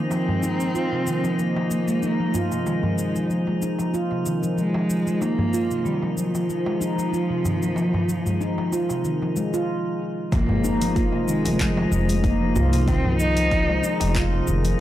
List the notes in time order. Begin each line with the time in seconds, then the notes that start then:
Already playing: D#3 F3 A#3 D#4 C5 D#5 G#5
0.11 F3 C4, darbuka tek, shaker
0.28 G#3, darbuka dum
0.43 D#4, shaker
0.60 F3, shaker
0.75 F4, shaker
0.92 C3, darbuka ka
1.07 D#3, shaker
1.24 F3, darbuka ka, shaker
1.39 F3 A#3, shaker
1.56 F3, darbuka tek
1.71 F3, shaker
1.88 G#3, shaker
2.03 D#4, shaker
2.20 F3
2.34 F4, darbuka dum, shaker
2.52 C3, darbuka ka, shaker
2.66 D#3 G#3, darbuka tek, shaker
2.83 F3, darbuka dum
2.98 F3, shaker
3.16 F3, shaker
3.30 F3, shaker
3.47 G#3, darbuka ka
3.62 D#4, shaker
3.79 F3, darbuka ka, shaker
3.94 F4, shaker
4.11 C3, darbuka ka
4.26 D#3, darbuka ka, shaker
4.43 F3, shaker
4.58 F3 G#3, shaker
4.74 F3, darbuka tek
4.90 F3, shaker
5.07 G#3, shaker
5.21 F3 A#3 D#4, darbuka tek, shaker
5.39 F3, darbuka dum
5.54 F4, shaker
5.71 C3, shaker
5.85 D#3 G3, shaker
6.02 F3, darbuka ka
6.17 F3, shaker
6.35 F3, darbuka ka, shaker
6.49 F3, shaker
6.66 G#3, darbuka tek
6.81 D#4, shaker
6.98 F3, shaker
7.13 F4, shaker
7.30 C3
7.45 D#3, darbuka dum, shaker
7.62 F3, darbuka ka, shaker
7.76 F3, darbuka tek, shaker
7.94 F3, darbuka dum
8.09 F3, shaker
8.26 G#3, darbuka dum, shaker
8.41 D#4, shaker
8.58 F3, darbuka ka
8.72 F4, darbuka ka, darbuka tek, shaker
8.89 C3, darbuka ka, shaker
9.05 D#3, shaker
9.22 F3, darbuka ka
9.36 G#3, darbuka ka, shaker
9.54 F4, darbuka tek, shaker
10.32 F3 A#3 D#4 D#5, kick, open hi-hat, impact, darbuka tek, shaker
10.49 G#3, darbuka dum
10.55 A#3 C5
10.60 D#4
10.64 shaker
10.69 G#4
10.82 F3, open hi-hat, shaker
10.96 F4, kick, open hi-hat, shaker
11.12 C3, darbuka ka
11.28 D#3 G#3, shaker
11.45 F1 F3, open hi-hat, darbuka ka, shaker
11.60 F3, kick, clap, open hi-hat, shaker
11.77 F3, darbuka tek
11.92 F1 F3, shaker
12.09 G#3, open hi-hat, shaker
12.23 A#3 D#4, kick, open hi-hat, shaker
12.41 F3
12.56 C2 F4, darbuka dum, shaker
12.73 C3, open hi-hat, darbuka ka, shaker
12.87 D#3 C4, kick, open hi-hat, darbuka tek, shaker
13.05 F3, darbuka dum
13.20 F3 D#4, shaker
13.37 F3, open hi-hat, shaker
13.51 F3, kick, open hi-hat, shaker
13.69 G#3, darbuka ka
13.83 D#4, shaker
14.00 F1 F3, open hi-hat, darbuka ka, shaker
14.15 F4, kick, clap, open hi-hat, shaker
14.32 C3, darbuka ka
14.47 F1 D#3, darbuka ka, shaker
14.65 F3, open hi-hat, shaker